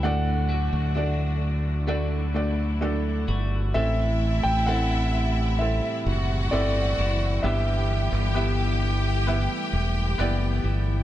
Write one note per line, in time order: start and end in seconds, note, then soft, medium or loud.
0.00 0.68 D2 medium
0.00 3.71 D3 medium
0.00 3.75 D3 medium
0.00 3.71 F#3 medium
0.00 0.12 G3 soft
0.00 3.71 A3 medium
0.00 0.91 A3 medium
0.00 0.49 D4 soft
0.00 0.12 E4 medium
0.00 1.86 F#4 medium
0.00 1.38 F#5 medium
0.04 1.38 A2 medium
0.04 0.91 D4 medium
0.04 0.91 F#4 medium
0.04 0.92 D5 medium
0.49 1.87 A3 medium
0.49 0.94 D4 medium
0.49 1.88 F#4 medium
0.73 3.25 D2 medium
0.95 1.83 A3 medium
0.95 1.87 D4 medium
0.95 1.84 D4 medium
0.95 1.84 F#4 medium
0.95 1.84 D5 medium
1.87 2.32 A3 medium
1.87 4.67 A3 medium
1.87 2.32 D4 medium
1.87 3.84 D4 soft
1.87 3.73 E4 medium
1.87 2.32 F#4 medium
1.87 3.27 F#4 medium
1.87 2.33 D5 medium
2.34 2.79 A3 medium
2.34 2.79 D4 medium
2.34 2.79 F#4 medium
2.34 2.80 D5 medium
2.81 3.70 A3 medium
2.81 3.70 D4 medium
2.81 3.70 F#4 medium
2.81 3.71 A4 medium
3.28 3.72 G1 medium
3.28 3.75 F#4 medium
3.74 4.41 A1 medium
3.74 5.10 A2 medium
3.74 7.44 A2 medium
3.74 7.40 C3 medium
3.74 5.10 E3 medium
3.74 11.03 E3 medium
3.74 5.58 A3 medium
3.74 4.63 C4 medium
3.74 4.63 E4 medium
3.74 7.40 E4 medium
3.74 6.03 E4 medium
3.74 4.63 A4 medium
3.74 4.68 A4 medium
3.74 4.46 E5 medium
3.74 4.63 E5 medium
3.74 6.03 E5 medium
4.43 5.79 A1 medium
4.43 4.68 G5 medium
4.66 5.55 C4 medium
4.66 6.51 C4 medium
4.66 5.55 E4 medium
4.66 6.98 E4 medium
4.66 5.56 A4 medium
4.66 7.44 A4 medium
4.66 5.56 E5 medium
4.66 5.62 F#5 medium
5.59 11.03 G3 medium
5.59 6.48 C4 medium
5.59 6.48 E4 medium
5.59 6.48 A4 medium
5.59 6.54 E5 medium
5.59 6.48 E5 medium
6.06 6.49 F#1 medium
6.06 7.41 F#4 medium
6.06 7.41 F#5 medium
6.51 6.95 G1 medium
6.51 7.39 C4 medium
6.51 7.53 C4 medium
6.51 7.39 E4 medium
6.51 7.39 A4 medium
6.51 7.46 D5 medium
6.51 7.40 E5 medium
6.98 7.41 F#1 medium
6.98 8.36 E4 medium
7.43 8.08 G1 medium
7.43 8.77 G2 medium
7.43 8.78 G3 medium
7.43 11.03 G3 medium
7.43 8.30 B3 medium
7.43 9.25 B3 medium
7.43 8.31 E4 medium
7.43 11.03 G4 medium
7.43 8.31 G4 medium
7.43 11.03 G4 medium
7.43 8.36 G4 medium
7.43 10.14 E5 medium
7.43 8.31 E5 medium
7.43 11.03 G5 medium
8.12 9.46 G1 medium
8.34 9.22 B3 medium
8.34 10.18 B3 medium
8.34 9.23 E4 medium
8.34 10.64 E4 medium
8.34 9.23 G4 medium
8.34 11.03 G4 medium
8.34 9.23 E5 medium
9.27 11.03 A3 medium
9.27 10.14 B3 medium
9.27 10.14 E4 medium
9.27 10.14 G4 medium
9.27 10.14 E5 medium
9.73 10.15 E1 medium
10.18 10.61 F#1 medium
10.18 11.03 B3 medium
10.18 11.03 E4 medium
10.18 11.03 G4 medium
10.18 11.03 D5 medium
10.64 11.03 G1 medium
10.64 11.03 E4 medium